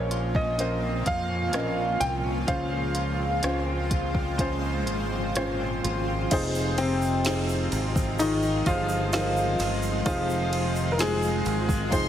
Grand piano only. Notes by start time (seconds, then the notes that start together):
Already playing: C#5
0.36 D#5
1.07 F5
2.00 G5
2.48 F5
6.78 C3 C4
8.19 D#3 D#4
8.67 F3 F4
9.13 F3 F4
10.06 F3 F4
10.92 A#4
11.00 G#3 G#4